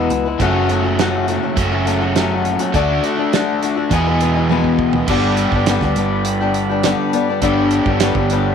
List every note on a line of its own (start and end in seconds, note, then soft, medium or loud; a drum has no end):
0.00 0.11 E1 loud
0.00 0.25 E2 medium
0.00 0.25 B2 medium
0.00 0.26 E3 medium
0.00 0.26 G#3 medium
0.00 0.25 B3 medium
0.00 0.24 E4 medium
0.10 0.35 C#2 medium
0.10 closed hi-hat medium
0.25 0.41 E3 soft
0.25 0.41 G#3 soft
0.25 0.40 B3 medium
0.25 0.40 E4 medium
0.40 1.37 F#1 medium
0.40 0.70 F#2 medium
0.40 0.70 C#3 medium
0.40 0.68 F#3 medium
0.40 0.69 A3 medium
0.40 0.70 C#4 loud
0.40 0.70 F#4 medium
0.40 kick loud
0.40 closed hi-hat medium
0.69 0.84 F#3 medium
0.69 0.84 A3 medium
0.69 0.83 C#4 medium
0.69 0.82 F#4 medium
0.69 closed hi-hat medium
0.84 0.98 F#3 soft
0.84 0.99 A3 soft
0.84 0.99 C#4 soft
0.84 0.99 F#4 medium
0.99 1.28 F#2 medium
0.99 1.28 C#3 medium
0.99 1.26 F#3 medium
0.99 1.27 A3 medium
0.99 1.28 C#4 medium
0.99 1.29 F#4 loud
0.99 snare loud
0.99 closed hi-hat medium
1.27 1.42 F#3 medium
1.27 1.42 A3 medium
1.27 1.42 C#4 medium
1.27 1.41 F#4 medium
1.27 closed hi-hat medium
1.42 1.72 F#3 soft
1.42 1.72 A3 soft
1.42 1.71 C#4 medium
1.42 1.70 F#4 medium
1.56 2.55 F#1 medium
1.56 2.72 F#2 medium
1.56 2.72 C#3 medium
1.56 2.72 F#3 medium
1.56 2.73 A3 medium
1.56 2.73 C#4 medium
1.56 2.73 F#4 medium
1.56 kick loud
1.56 closed hi-hat medium
1.72 1.84 F#3 soft
1.72 1.86 A3 medium
1.72 1.87 C#4 medium
1.72 1.86 F#4 medium
1.86 2.01 F#3 medium
1.86 2.01 A3 medium
1.86 2.00 C#4 medium
1.86 2.00 F#4 medium
1.86 closed hi-hat medium
2.01 2.15 F#3 soft
2.01 2.15 A3 soft
2.01 2.16 C#4 medium
2.01 2.16 F#4 medium
2.15 2.60 F#2 medium
2.15 2.60 C#3 medium
2.15 2.60 F#3 medium
2.15 2.60 A3 medium
2.15 2.59 C#4 medium
2.15 2.58 F#4 medium
2.15 snare loud
2.15 closed hi-hat medium
2.45 closed hi-hat medium
2.59 2.74 F#3 soft
2.59 2.74 A3 soft
2.59 2.75 C#4 medium
2.59 2.74 F#4 medium
2.59 closed hi-hat medium
2.74 2.99 D2 medium
2.74 3.02 D3 medium
2.74 3.03 A3 medium
2.74 3.04 D4 medium
2.74 3.04 F#4 loud
2.74 kick loud
2.74 closed hi-hat medium
3.03 3.18 D3 medium
3.03 3.19 A3 medium
3.03 3.17 D4 medium
3.03 3.16 F#4 medium
3.03 closed hi-hat medium
3.17 3.32 A3 soft
3.17 3.33 D4 medium
3.17 3.32 F#4 medium
3.33 3.60 D3 medium
3.33 3.61 A3 medium
3.33 3.62 D4 medium
3.33 3.63 F#4 medium
3.33 snare loud
3.33 closed hi-hat medium
3.61 3.76 D3 medium
3.61 3.77 A3 medium
3.61 3.76 D4 medium
3.61 3.75 F#4 medium
3.61 closed hi-hat medium
3.76 3.92 A3 soft
3.76 3.92 D4 medium
3.76 3.91 F#4 medium
3.91 4.79 E2 medium
3.91 4.06 E2 medium
3.91 4.07 B2 medium
3.91 4.06 E3 medium
3.91 4.07 G#3 medium
3.91 4.06 B3 medium
3.91 4.05 G#4 medium
3.91 kick loud
3.91 closed hi-hat medium
4.07 4.19 E3 medium
4.07 4.20 G#3 medium
4.07 4.21 B3 medium
4.07 4.21 G#4 medium
4.20 4.35 E3 medium
4.20 4.36 G#3 medium
4.20 4.35 B3 medium
4.20 4.34 G#4 medium
4.20 closed hi-hat medium
4.35 4.50 E3 soft
4.35 4.51 G#3 soft
4.35 4.51 B3 soft
4.35 4.50 G#4 medium
4.50 4.94 E2 medium
4.50 4.94 B2 medium
4.50 4.94 E3 medium
4.50 4.95 G#3 medium
4.50 4.94 B3 medium
4.50 4.93 G#4 medium
4.50 high tom medium
4.64 kick medium
4.79 5.03 D2 medium
4.79 kick medium
4.93 5.10 G#3 soft
4.93 5.09 B3 medium
4.93 5.09 G#4 medium
4.93 floor tom medium
4.97 5.10 E3 soft
5.08 5.44 G1 loud
5.08 5.53 G2 medium
5.08 5.53 D3 medium
5.08 5.53 G3 medium
5.08 5.53 B3 loud
5.08 5.53 D4 loud
5.08 8.55 G4 medium
5.08 5.52 G4 loud
5.08 7.40 D5 medium
5.08 8.55 B5 medium
5.08 kick medium
5.08 crash loud
5.37 closed hi-hat medium
5.52 5.77 G1 medium
5.52 5.67 G3 soft
5.52 5.68 B3 soft
5.52 5.68 D4 soft
5.52 5.68 G4 medium
5.52 kick medium
5.66 5.82 G2 medium
5.66 5.82 D3 medium
5.66 5.82 G3 medium
5.66 5.83 B3 medium
5.66 5.82 D4 medium
5.66 5.81 G4 medium
5.66 snare loud
5.66 closed hi-hat medium
5.81 5.93 D2 medium
5.81 5.96 G3 soft
5.81 5.97 B3 medium
5.81 5.97 D4 medium
5.81 5.96 G4 medium
5.81 kick medium
5.81 snare soft
5.96 6.93 G1 loud
5.96 6.40 G3 medium
5.96 6.41 B3 medium
5.96 6.41 D4 medium
5.96 6.40 G4 medium
5.96 closed hi-hat medium
6.25 closed hi-hat medium
6.41 6.71 G3 soft
6.41 6.70 B3 medium
6.41 6.70 D4 medium
6.41 6.68 G4 medium
6.54 closed hi-hat medium
6.70 6.84 G3 soft
6.70 6.84 B3 soft
6.70 6.85 D4 medium
6.70 6.84 G4 soft
6.83 7.13 G2 medium
6.83 7.14 D3 medium
6.83 7.12 G3 medium
6.83 7.12 B3 medium
6.83 7.13 D4 loud
6.83 7.14 G4 loud
6.83 snare loud
6.83 closed hi-hat medium
7.13 7.28 G3 medium
7.13 7.28 B3 medium
7.13 7.28 D4 medium
7.13 7.27 G4 medium
7.13 closed hi-hat medium
7.28 7.42 G3 soft
7.28 7.42 B3 soft
7.28 7.42 D4 medium
7.28 7.43 G4 medium
7.42 7.79 G1 medium
7.42 7.86 G2 medium
7.42 7.86 D3 medium
7.42 7.87 G3 medium
7.42 7.87 B3 loud
7.42 7.86 D4 medium
7.42 7.85 G4 medium
7.42 8.55 C#5 medium
7.42 kick loud
7.42 closed hi-hat medium
7.71 closed hi-hat medium
7.86 8.10 G1 medium
7.86 8.01 G3 soft
7.86 8.01 B3 soft
7.86 8.01 D4 soft
7.86 8.01 G4 medium
7.86 kick medium
8.00 8.16 G2 medium
8.00 8.16 D3 medium
8.00 8.16 G3 medium
8.00 8.16 B3 medium
8.00 8.16 D4 medium
8.00 8.15 G4 loud
8.00 snare loud
8.00 closed hi-hat loud
8.15 8.55 G1 medium
8.15 8.31 B3 medium
8.15 8.31 D4 medium
8.15 8.30 G4 medium
8.15 kick medium
8.19 8.30 G3 soft
8.30 8.55 G3 medium
8.30 8.55 B3 medium
8.30 8.55 D4 medium
8.30 8.55 G4 medium
8.30 closed hi-hat medium